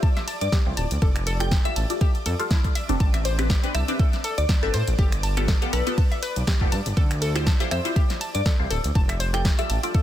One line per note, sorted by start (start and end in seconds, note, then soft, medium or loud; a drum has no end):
0.00 2.99 D5 medium
0.00 0.28 E5 loud
0.00 0.10 A5 medium
0.00 2.99 D6 medium
0.00 kick loud
0.00 ride medium
0.17 0.20 E5 medium
0.17 snare soft
0.17 closed hi-hat soft
0.28 0.34 A5 medium
0.28 open hi-hat loud
0.28 ride medium
0.41 0.48 G2 medium
0.41 0.56 D5 medium
0.41 closed hi-hat medium
0.52 0.59 G4 medium
0.52 kick loud
0.52 snare loud
0.52 ride medium
0.66 0.73 C2 medium
0.66 0.81 E4 medium
0.66 0.81 F4 medium
0.66 0.81 G4 medium
0.66 0.81 C5 medium
0.77 0.86 D1 medium
0.77 0.84 A5 medium
0.77 open hi-hat loud
0.77 ride medium
0.91 0.98 D2 medium
0.91 closed hi-hat medium
1.02 1.57 F1 loud
1.02 1.09 A4 medium
1.02 kick loud
1.02 ride medium
1.16 finger snap medium
1.16 closed hi-hat soft
1.27 1.37 A4 loud
1.27 open hi-hat loud
1.27 ride medium
1.40 1.62 F4 medium
1.40 1.62 G4 medium
1.40 1.62 A4 medium
1.40 1.62 D5 medium
1.40 1.55 G5 medium
1.40 finger snap medium
1.40 closed hi-hat medium
1.51 1.58 A5 medium
1.51 kick loud
1.51 snare loud
1.51 ride medium
1.65 1.87 F4 loud
1.65 1.87 G4 medium
1.65 1.87 A4 medium
1.65 1.87 D5 loud
1.65 2.34 E5 medium
1.65 1.69 E5 medium
1.65 closed hi-hat soft
1.76 1.85 A1 loud
1.76 1.83 A5 medium
1.76 open hi-hat loud
1.76 ride medium
1.90 2.05 F4 medium
1.90 2.05 G4 medium
1.90 2.05 A4 medium
1.90 2.05 D5 loud
1.90 closed hi-hat medium
2.01 2.08 G4 medium
2.01 kick loud
2.01 ride medium
2.15 closed hi-hat soft
2.26 2.34 F2 loud
2.26 2.30 A4 medium
2.26 open hi-hat loud
2.26 ride medium
2.39 2.55 F4 loud
2.39 2.55 G4 medium
2.39 2.55 A4 medium
2.39 2.55 F5 loud
2.39 closed hi-hat medium
2.51 2.57 E4 loud
2.51 kick loud
2.51 snare loud
2.51 ride medium
2.64 kick medium
2.64 closed hi-hat soft
2.75 2.86 E5 medium
2.75 open hi-hat loud
2.75 ride medium
2.89 2.96 F1 medium
2.89 3.15 C4 medium
2.89 3.15 D4 medium
2.89 3.15 G4 medium
2.89 3.15 A4 loud
2.89 closed hi-hat medium
3.00 3.55 A1 medium
3.00 10.02 D5 medium
3.00 3.07 A5 medium
3.00 10.02 D6 medium
3.00 kick loud
3.00 ride medium
3.14 3.17 E5 medium
3.14 finger snap medium
3.14 closed hi-hat medium
3.25 3.35 C5 loud
3.25 open hi-hat loud
3.25 ride medium
3.39 3.60 C4 medium
3.39 3.60 D4 medium
3.39 3.60 G4 medium
3.39 3.60 B4 medium
3.39 finger snap medium
3.39 closed hi-hat medium
3.50 3.57 G4 medium
3.50 kick loud
3.50 snare loud
3.50 ride medium
3.63 3.85 C4 loud
3.63 3.85 D4 medium
3.63 3.85 G4 medium
3.63 3.85 B4 loud
3.63 closed hi-hat medium
3.75 3.83 C2 loud
3.75 4.24 E5 medium
3.75 3.81 A5 medium
3.75 finger snap medium
3.75 open hi-hat medium
3.75 ride medium
3.88 4.03 C4 medium
3.88 4.03 D4 medium
3.88 4.04 G4 medium
3.88 4.04 B4 loud
3.88 closed hi-hat medium
3.99 4.06 A4 medium
3.99 kick loud
3.99 ride medium
4.13 snare soft
4.13 closed hi-hat soft
4.24 4.34 A4 loud
4.24 open hi-hat loud
4.24 ride medium
4.38 4.45 D2 medium
4.38 4.53 D5 medium
4.38 closed hi-hat medium
4.49 4.56 A5 medium
4.49 kick loud
4.49 snare loud
4.49 ride medium
4.63 4.70 G1 medium
4.63 4.78 C4 medium
4.63 4.78 D4 medium
4.63 4.78 G4 medium
4.63 4.78 A4 loud
4.63 4.78 B4 medium
4.63 4.66 E5 medium
4.74 4.82 A2 medium
4.74 4.84 C5 loud
4.74 open hi-hat loud
4.74 ride medium
4.88 4.94 A1 medium
4.88 closed hi-hat medium
4.99 5.54 G1 loud
4.99 5.05 G4 medium
4.99 kick loud
4.99 ride medium
5.12 finger snap medium
5.12 closed hi-hat medium
5.23 5.30 A5 medium
5.23 open hi-hat loud
5.23 ride medium
5.37 5.59 B3 medium
5.37 5.59 F4 medium
5.37 5.59 G4 medium
5.37 5.59 A4 medium
5.37 finger snap medium
5.37 closed hi-hat medium
5.48 5.55 A4 medium
5.48 kick loud
5.48 snare loud
5.48 ride medium
5.62 5.83 B3 medium
5.62 5.83 F4 medium
5.62 5.83 G4 medium
5.62 5.84 A4 loud
5.62 closed hi-hat medium
5.73 5.82 B1 loud
5.73 5.83 A4 loud
5.73 6.43 B4 loud
5.73 open hi-hat medium
5.73 ride medium
5.87 6.02 B3 medium
5.87 6.02 F4 medium
5.87 6.02 G4 medium
5.87 6.02 A4 loud
5.87 closed hi-hat medium
5.98 6.04 A5 medium
5.98 kick loud
5.98 ride medium
6.12 6.15 E5 medium
6.12 closed hi-hat soft
6.23 6.33 B4 loud
6.23 open hi-hat loud
6.23 ride medium
6.36 6.43 B1 medium
6.36 closed hi-hat medium
6.47 6.54 G4 medium
6.47 kick loud
6.47 snare loud
6.47 ride medium
6.61 6.68 F1 medium
6.61 6.76 B3 medium
6.61 6.76 F4 medium
6.61 6.76 G4 medium
6.61 6.76 A4 medium
6.61 kick medium
6.72 6.81 G2 medium
6.72 6.79 A5 medium
6.72 open hi-hat medium
6.72 ride medium
6.86 6.93 G1 medium
6.86 closed hi-hat medium
6.97 7.52 D2 loud
6.97 7.04 A4 medium
6.97 kick loud
6.97 ride medium
7.11 finger snap medium
7.11 closed hi-hat medium
7.22 7.32 A4 loud
7.22 open hi-hat loud
7.22 ride medium
7.35 7.57 E4 medium
7.35 7.57 F4 medium
7.35 7.57 G4 medium
7.35 7.57 C5 medium
7.35 finger snap medium
7.35 closed hi-hat medium
7.47 7.53 A5 medium
7.47 kick loud
7.47 snare loud
7.47 ride medium
7.60 7.82 E4 medium
7.60 7.82 F4 medium
7.60 7.82 G4 medium
7.60 7.82 C5 loud
7.60 7.64 E5 medium
7.60 closed hi-hat medium
7.71 7.80 F2 medium
7.71 7.81 C5 loud
7.71 8.21 E5 medium
7.71 finger snap medium
7.71 open hi-hat medium
7.71 ride medium
7.85 8.00 E4 medium
7.85 8.00 F4 medium
7.85 8.00 G4 medium
7.85 8.00 C5 loud
7.85 closed hi-hat medium
7.96 8.03 G4 medium
7.96 kick loud
7.96 ride medium
8.10 snare soft
8.10 closed hi-hat soft
8.21 8.28 A5 medium
8.21 open hi-hat loud
8.21 ride medium
8.35 8.42 G2 medium
8.35 8.50 D5 medium
8.35 closed hi-hat medium
8.46 8.52 A4 medium
8.46 kick loud
8.46 snare loud
8.46 ride medium
8.59 8.66 C2 medium
8.59 8.74 E4 medium
8.59 8.75 F4 medium
8.59 8.75 G4 medium
8.59 8.75 C5 medium
8.70 8.79 D1 medium
8.70 8.81 A4 loud
8.70 open hi-hat medium
8.70 ride medium
8.84 8.91 D2 medium
8.84 closed hi-hat medium
8.95 9.50 F1 loud
8.95 9.02 A5 medium
8.95 kick loud
8.95 ride medium
9.09 9.12 E5 medium
9.09 finger snap medium
9.09 closed hi-hat medium
9.20 9.30 C5 loud
9.20 open hi-hat loud
9.20 ride medium
9.34 9.55 F4 medium
9.34 9.55 G4 medium
9.34 9.55 A4 medium
9.34 9.55 D5 medium
9.34 9.49 G5 medium
9.34 finger snap medium
9.34 closed hi-hat medium
9.45 9.52 G4 medium
9.45 kick loud
9.45 snare loud
9.45 ride medium
9.58 9.80 F4 loud
9.58 9.80 G4 medium
9.58 9.80 A4 medium
9.58 9.80 D5 loud
9.58 10.02 E5 medium
9.58 closed hi-hat medium
9.70 9.78 A1 medium
9.70 9.76 A5 medium
9.70 open hi-hat medium
9.70 ride medium
9.83 9.98 F4 medium
9.83 9.99 G4 medium
9.83 9.99 A4 medium
9.83 9.99 D5 loud
9.83 closed hi-hat medium
9.94 10.01 A4 medium
9.94 kick loud
9.94 ride medium